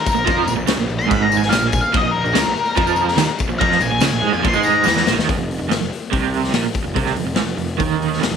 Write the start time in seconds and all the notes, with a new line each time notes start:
0.06 A#4, kick, tambourine
0.15 A#1 A#2, tambourine
0.25 F2 F3, kick, tambourine, crash
0.47 A#1 A#2, tambourine
0.57 A#1 A#2, tambourine
0.67 C#2 C#3, snare, tambourine, crash
0.77 A#1 A#2, tambourine
0.88 A#1 A#2, tambourine
0.99 C6, tambourine
1.06 G#2 B5
1.11 G#1, kick, tambourine, crash
1.22 A#5
1.32 tambourine
1.37 G#5
1.42 snare, tambourine
1.49 A#1 A#2 F5, snare, tambourine, crash
1.60 A#1 A#2
1.67 G#5
1.72 kick, tambourine
1.81 F5, tambourine
1.92 A#1 A#2, kick, tambourine, crash
1.97 D#5
2.03 A#1 A#2
2.11 A#4
2.25 A#1 A#2, tambourine
2.34 C#2 C#3, snare, tambourine, crash
2.45 A#1 A#2, tambourine
2.55 muted picked electric bass stroke, muted overdriven electric guitar stroke, tambourine
2.65 tambourine
2.75 F2 F3, kick, tambourine, crash
2.87 tambourine
2.96 tambourine
3.08 snare, tambourine
3.17 D#2 D#3, snare, tambourine, crash
3.28 muted overdriven electric guitar stroke, muted picked electric bass stroke
3.39 kick, tambourine
3.49 A#1 A#2, tambourine
3.59 F2 F3 A#5, kick, tambourine, crash
3.72 snare, tambourine
3.80 A#1 A#2 G#5, tambourine
3.90 A#1 A#2, tambourine
4.00 C#2 C#3, snare, tambourine, crash
4.12 A#1 A#2
4.22 G#2 G#3
4.32 F2 F3, tambourine
4.43 A#1 A#2, kick, tambourine, crash
4.48 C6
4.53 G#2 G#3, tambourine
4.63 A#5, tambourine
4.84 E2 E3, snare, tambourine
4.96 snare, tambourine
5.05 A#1 A#2, snare, tambourine
5.16 D#2 D#3, snare, tambourine
5.29 F1 F2, kick, open hi-hat
5.38 F1 F2
5.51 open hi-hat
5.59 F1 F2
5.69 G#1 G#2, snare, open hi-hat
5.80 F1 F2
5.90 muted overdriven electric guitar stroke, muted picked electric bass stroke, open hi-hat
6.12 C2 C3, kick, open hi-hat
6.34 open hi-hat
6.44 snare
6.54 A#1 A#2, snare, open hi-hat
6.65 muted overdriven electric guitar stroke, muted picked electric bass stroke
6.74 kick, open hi-hat
6.84 F1 F2
6.95 C2 C3, kick, open hi-hat
7.06 snare
7.14 F1 F2, open hi-hat
7.25 F1 F2
7.34 G#1 G#2, snare, open hi-hat
7.45 F1 F2
7.57 F1 F2, open hi-hat
7.78 D#2 D#3, kick, open hi-hat
8.02 open hi-hat
8.13 snare
8.20 F1 F2, snare, open hi-hat
8.29 F1 F2